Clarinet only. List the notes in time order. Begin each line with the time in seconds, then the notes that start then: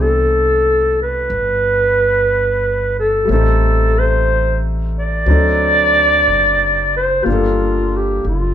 0.01 A4
1.02 B4
2.99 A4
3.32 A4
3.99 C5
4.99 D5
6.97 C5
7.25 F4
7.96 G4
8.28 F4